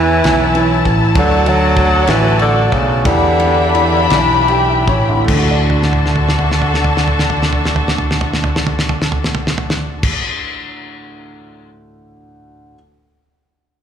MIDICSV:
0, 0, Header, 1, 7, 480
1, 0, Start_track
1, 0, Key_signature, 2, "major"
1, 0, Tempo, 613497
1, 904, Time_signature, 6, 3, 24, 8
1, 1874, Tempo, 673401
1, 2834, Tempo, 739827
1, 3314, Tempo, 820793
1, 6194, Tempo, 831025
1, 8747, End_track
2, 0, Start_track
2, 0, Title_t, "String section"
2, 0, Program_c, 0, 48
2, 0, Note_on_c, 0, 64, 87
2, 0, Note_on_c, 0, 71, 79
2, 0, Note_on_c, 0, 73, 74
2, 0, Note_on_c, 0, 81, 98
2, 875, Note_off_c, 0, 71, 0
2, 876, Note_off_c, 0, 73, 0
2, 891, Note_off_c, 0, 64, 0
2, 900, Note_on_c, 0, 74, 79
2, 905, Note_on_c, 0, 66, 85
2, 908, Note_on_c, 0, 69, 76
2, 2318, Note_off_c, 0, 81, 0
2, 2327, Note_off_c, 0, 74, 0
2, 2330, Note_off_c, 0, 66, 0
2, 2331, Note_off_c, 0, 69, 0
2, 2336, Note_on_c, 0, 62, 79
2, 2343, Note_on_c, 0, 76, 74
2, 2343, Note_on_c, 0, 83, 96
2, 2345, Note_on_c, 0, 67, 72
2, 3767, Note_off_c, 0, 62, 0
2, 3770, Note_off_c, 0, 76, 0
2, 3770, Note_off_c, 0, 83, 0
2, 3771, Note_off_c, 0, 67, 0
2, 3780, Note_on_c, 0, 66, 72
2, 3781, Note_on_c, 0, 81, 86
2, 3783, Note_on_c, 0, 50, 76
2, 3783, Note_on_c, 0, 69, 75
2, 3784, Note_on_c, 0, 62, 67
2, 6624, Note_off_c, 0, 66, 0
2, 6624, Note_off_c, 0, 81, 0
2, 6625, Note_off_c, 0, 50, 0
2, 6625, Note_off_c, 0, 69, 0
2, 6626, Note_off_c, 0, 62, 0
2, 8747, End_track
3, 0, Start_track
3, 0, Title_t, "Steel-string acoustic guitar"
3, 0, Program_c, 1, 25
3, 0, Note_on_c, 1, 52, 67
3, 0, Note_on_c, 1, 59, 72
3, 0, Note_on_c, 1, 61, 73
3, 181, Note_off_c, 1, 52, 0
3, 190, Note_on_c, 1, 52, 76
3, 419, Note_off_c, 1, 61, 0
3, 428, Note_on_c, 1, 61, 75
3, 653, Note_off_c, 1, 59, 0
3, 663, Note_on_c, 1, 59, 69
3, 899, Note_off_c, 1, 52, 0
3, 902, Note_on_c, 1, 54, 94
3, 903, Note_off_c, 1, 61, 0
3, 906, Note_on_c, 1, 62, 76
3, 949, Note_off_c, 1, 59, 0
3, 1130, Note_off_c, 1, 54, 0
3, 1140, Note_on_c, 1, 54, 70
3, 1384, Note_on_c, 1, 57, 72
3, 1616, Note_off_c, 1, 54, 0
3, 1626, Note_on_c, 1, 54, 71
3, 2097, Note_off_c, 1, 57, 0
3, 2106, Note_on_c, 1, 57, 65
3, 2341, Note_off_c, 1, 54, 0
3, 2344, Note_on_c, 1, 52, 77
3, 2349, Note_on_c, 1, 67, 76
3, 2365, Note_off_c, 1, 62, 0
3, 2390, Note_off_c, 1, 57, 0
3, 2589, Note_on_c, 1, 59, 69
3, 2838, Note_on_c, 1, 62, 66
3, 3062, Note_off_c, 1, 59, 0
3, 3069, Note_on_c, 1, 59, 77
3, 3307, Note_off_c, 1, 67, 0
3, 3315, Note_on_c, 1, 67, 65
3, 3544, Note_off_c, 1, 62, 0
3, 3547, Note_on_c, 1, 62, 60
3, 3757, Note_off_c, 1, 59, 0
3, 3760, Note_on_c, 1, 57, 83
3, 3783, Note_off_c, 1, 52, 0
3, 3804, Note_off_c, 1, 62, 0
3, 3806, Note_on_c, 1, 62, 74
3, 3831, Note_off_c, 1, 67, 0
3, 3843, Note_on_c, 1, 66, 87
3, 6637, Note_off_c, 1, 57, 0
3, 6660, Note_off_c, 1, 62, 0
3, 6678, Note_off_c, 1, 66, 0
3, 8747, End_track
4, 0, Start_track
4, 0, Title_t, "Grand piano"
4, 0, Program_c, 2, 0
4, 0, Control_c, 2, 64, 127
4, 0, Note_on_c, 2, 52, 62
4, 183, Note_off_c, 2, 52, 0
4, 194, Note_on_c, 2, 52, 64
4, 420, Note_off_c, 2, 52, 0
4, 432, Note_on_c, 2, 52, 71
4, 661, Note_off_c, 2, 52, 0
4, 673, Note_on_c, 2, 52, 63
4, 899, Note_off_c, 2, 52, 0
4, 907, Note_on_c, 2, 54, 78
4, 915, Control_c, 2, 64, 0
4, 1034, Control_c, 2, 64, 127
4, 1150, Note_on_c, 2, 50, 73
4, 2083, Note_off_c, 2, 50, 0
4, 2316, Note_off_c, 2, 54, 0
4, 2349, Note_on_c, 2, 52, 76
4, 2352, Control_c, 2, 64, 0
4, 2456, Control_c, 2, 64, 127
4, 2576, Note_off_c, 2, 52, 0
4, 2587, Note_on_c, 2, 52, 60
4, 2826, Note_off_c, 2, 52, 0
4, 2837, Note_on_c, 2, 52, 57
4, 3068, Note_off_c, 2, 52, 0
4, 3078, Note_on_c, 2, 52, 57
4, 3318, Note_off_c, 2, 52, 0
4, 3326, Note_on_c, 2, 79, 73
4, 3327, Note_on_c, 2, 52, 62
4, 3426, Note_off_c, 2, 79, 0
4, 3436, Note_on_c, 2, 76, 56
4, 3540, Note_off_c, 2, 52, 0
4, 3540, Note_off_c, 2, 76, 0
4, 3549, Note_on_c, 2, 52, 57
4, 3551, Note_on_c, 2, 73, 70
4, 3667, Note_on_c, 2, 38, 65
4, 3716, Note_on_c, 2, 45, 55
4, 3768, Note_on_c, 2, 57, 56
4, 3770, Note_off_c, 2, 73, 0
4, 3778, Note_off_c, 2, 52, 0
4, 3791, Control_c, 2, 64, 0
4, 3817, Note_on_c, 2, 62, 53
4, 3866, Note_on_c, 2, 66, 52
4, 3881, Control_c, 2, 64, 127
4, 3915, Note_on_c, 2, 74, 67
4, 6568, Note_off_c, 2, 38, 0
4, 6592, Note_off_c, 2, 45, 0
4, 6618, Note_off_c, 2, 57, 0
4, 6642, Note_off_c, 2, 62, 0
4, 6666, Note_off_c, 2, 66, 0
4, 6691, Note_off_c, 2, 74, 0
4, 8124, Control_c, 2, 64, 0
4, 8747, End_track
5, 0, Start_track
5, 0, Title_t, "Tenor saxophone"
5, 0, Program_c, 3, 66
5, 0, Note_on_c, 3, 52, 104
5, 682, Note_off_c, 3, 52, 0
5, 921, Note_on_c, 3, 50, 103
5, 1159, Note_on_c, 3, 54, 118
5, 1170, Note_off_c, 3, 50, 0
5, 1647, Note_on_c, 3, 52, 101
5, 1659, Note_off_c, 3, 54, 0
5, 1880, Note_off_c, 3, 52, 0
5, 1884, Note_on_c, 3, 50, 101
5, 2113, Note_on_c, 3, 49, 87
5, 2123, Note_off_c, 3, 50, 0
5, 2353, Note_on_c, 3, 50, 90
5, 2363, Note_off_c, 3, 49, 0
5, 3320, Note_off_c, 3, 50, 0
5, 8747, End_track
6, 0, Start_track
6, 0, Title_t, "Picked electric bass"
6, 0, Program_c, 4, 34
6, 0, Note_on_c, 4, 40, 107
6, 161, Note_off_c, 4, 40, 0
6, 195, Note_on_c, 4, 35, 91
6, 640, Note_off_c, 4, 35, 0
6, 671, Note_on_c, 4, 33, 106
6, 891, Note_off_c, 4, 33, 0
6, 901, Note_on_c, 4, 38, 106
6, 1595, Note_off_c, 4, 38, 0
6, 1625, Note_on_c, 4, 33, 97
6, 2078, Note_off_c, 4, 33, 0
6, 2106, Note_on_c, 4, 35, 91
6, 2328, Note_off_c, 4, 35, 0
6, 2344, Note_on_c, 4, 40, 103
6, 3046, Note_off_c, 4, 40, 0
6, 3070, Note_on_c, 4, 35, 84
6, 3545, Note_off_c, 4, 35, 0
6, 3545, Note_on_c, 4, 33, 97
6, 3769, Note_off_c, 4, 33, 0
6, 3783, Note_on_c, 4, 38, 103
6, 6625, Note_off_c, 4, 38, 0
6, 8747, End_track
7, 0, Start_track
7, 0, Title_t, "Drums"
7, 188, Note_on_c, 9, 51, 60
7, 198, Note_on_c, 9, 38, 104
7, 267, Note_off_c, 9, 51, 0
7, 276, Note_off_c, 9, 38, 0
7, 429, Note_on_c, 9, 51, 44
7, 507, Note_off_c, 9, 51, 0
7, 668, Note_on_c, 9, 36, 82
7, 671, Note_on_c, 9, 51, 40
7, 746, Note_off_c, 9, 36, 0
7, 749, Note_off_c, 9, 51, 0
7, 902, Note_on_c, 9, 51, 80
7, 904, Note_on_c, 9, 36, 127
7, 981, Note_off_c, 9, 51, 0
7, 982, Note_off_c, 9, 36, 0
7, 1144, Note_on_c, 9, 51, 52
7, 1222, Note_off_c, 9, 51, 0
7, 1380, Note_on_c, 9, 51, 49
7, 1382, Note_on_c, 9, 36, 101
7, 1458, Note_off_c, 9, 51, 0
7, 1461, Note_off_c, 9, 36, 0
7, 1623, Note_on_c, 9, 51, 71
7, 1632, Note_on_c, 9, 38, 107
7, 1701, Note_off_c, 9, 51, 0
7, 1711, Note_off_c, 9, 38, 0
7, 1873, Note_on_c, 9, 51, 40
7, 1944, Note_off_c, 9, 51, 0
7, 2107, Note_on_c, 9, 51, 35
7, 2108, Note_on_c, 9, 36, 83
7, 2179, Note_off_c, 9, 36, 0
7, 2179, Note_off_c, 9, 51, 0
7, 2343, Note_on_c, 9, 36, 123
7, 2343, Note_on_c, 9, 51, 76
7, 2414, Note_off_c, 9, 36, 0
7, 2414, Note_off_c, 9, 51, 0
7, 2587, Note_on_c, 9, 51, 51
7, 2659, Note_off_c, 9, 51, 0
7, 2837, Note_on_c, 9, 51, 50
7, 2902, Note_off_c, 9, 51, 0
7, 3068, Note_on_c, 9, 51, 69
7, 3076, Note_on_c, 9, 38, 115
7, 3133, Note_off_c, 9, 51, 0
7, 3141, Note_off_c, 9, 38, 0
7, 3314, Note_on_c, 9, 51, 38
7, 3372, Note_off_c, 9, 51, 0
7, 3544, Note_on_c, 9, 36, 88
7, 3544, Note_on_c, 9, 51, 40
7, 3602, Note_off_c, 9, 51, 0
7, 3603, Note_off_c, 9, 36, 0
7, 3782, Note_on_c, 9, 36, 126
7, 3782, Note_on_c, 9, 49, 110
7, 3841, Note_off_c, 9, 36, 0
7, 3841, Note_off_c, 9, 49, 0
7, 4026, Note_on_c, 9, 43, 51
7, 4084, Note_off_c, 9, 43, 0
7, 4099, Note_on_c, 9, 38, 49
7, 4157, Note_off_c, 9, 38, 0
7, 4161, Note_on_c, 9, 43, 54
7, 4219, Note_off_c, 9, 43, 0
7, 4236, Note_on_c, 9, 38, 51
7, 4293, Note_on_c, 9, 43, 58
7, 4294, Note_off_c, 9, 38, 0
7, 4352, Note_off_c, 9, 43, 0
7, 4369, Note_on_c, 9, 38, 61
7, 4427, Note_off_c, 9, 38, 0
7, 4429, Note_on_c, 9, 43, 58
7, 4487, Note_off_c, 9, 43, 0
7, 4502, Note_on_c, 9, 38, 58
7, 4561, Note_off_c, 9, 38, 0
7, 4562, Note_on_c, 9, 43, 60
7, 4621, Note_off_c, 9, 43, 0
7, 4635, Note_on_c, 9, 38, 53
7, 4694, Note_off_c, 9, 38, 0
7, 4695, Note_on_c, 9, 43, 66
7, 4754, Note_off_c, 9, 43, 0
7, 4769, Note_on_c, 9, 38, 64
7, 4828, Note_off_c, 9, 38, 0
7, 4831, Note_on_c, 9, 43, 60
7, 4889, Note_off_c, 9, 43, 0
7, 4899, Note_on_c, 9, 38, 72
7, 4958, Note_off_c, 9, 38, 0
7, 4961, Note_on_c, 9, 43, 70
7, 5020, Note_off_c, 9, 43, 0
7, 5035, Note_on_c, 9, 38, 67
7, 5094, Note_off_c, 9, 38, 0
7, 5094, Note_on_c, 9, 43, 65
7, 5153, Note_off_c, 9, 43, 0
7, 5169, Note_on_c, 9, 38, 71
7, 5228, Note_off_c, 9, 38, 0
7, 5230, Note_on_c, 9, 43, 75
7, 5289, Note_off_c, 9, 43, 0
7, 5302, Note_on_c, 9, 38, 80
7, 5360, Note_off_c, 9, 38, 0
7, 5362, Note_on_c, 9, 43, 72
7, 5421, Note_off_c, 9, 43, 0
7, 5435, Note_on_c, 9, 38, 80
7, 5493, Note_off_c, 9, 38, 0
7, 5495, Note_on_c, 9, 43, 85
7, 5553, Note_off_c, 9, 43, 0
7, 5567, Note_on_c, 9, 38, 81
7, 5626, Note_off_c, 9, 38, 0
7, 5628, Note_on_c, 9, 43, 81
7, 5686, Note_off_c, 9, 43, 0
7, 5700, Note_on_c, 9, 38, 92
7, 5758, Note_off_c, 9, 38, 0
7, 5761, Note_on_c, 9, 43, 87
7, 5819, Note_off_c, 9, 43, 0
7, 5832, Note_on_c, 9, 38, 86
7, 5890, Note_off_c, 9, 38, 0
7, 5894, Note_on_c, 9, 43, 90
7, 5952, Note_off_c, 9, 43, 0
7, 5966, Note_on_c, 9, 38, 85
7, 6024, Note_off_c, 9, 38, 0
7, 6026, Note_on_c, 9, 43, 78
7, 6085, Note_off_c, 9, 43, 0
7, 6099, Note_on_c, 9, 38, 91
7, 6157, Note_off_c, 9, 38, 0
7, 6159, Note_on_c, 9, 43, 95
7, 6217, Note_off_c, 9, 43, 0
7, 6231, Note_on_c, 9, 38, 91
7, 6289, Note_off_c, 9, 38, 0
7, 6293, Note_on_c, 9, 43, 93
7, 6351, Note_off_c, 9, 43, 0
7, 6364, Note_on_c, 9, 38, 99
7, 6422, Note_off_c, 9, 38, 0
7, 6554, Note_on_c, 9, 49, 102
7, 6555, Note_on_c, 9, 36, 114
7, 6612, Note_off_c, 9, 49, 0
7, 6613, Note_off_c, 9, 36, 0
7, 8747, End_track
0, 0, End_of_file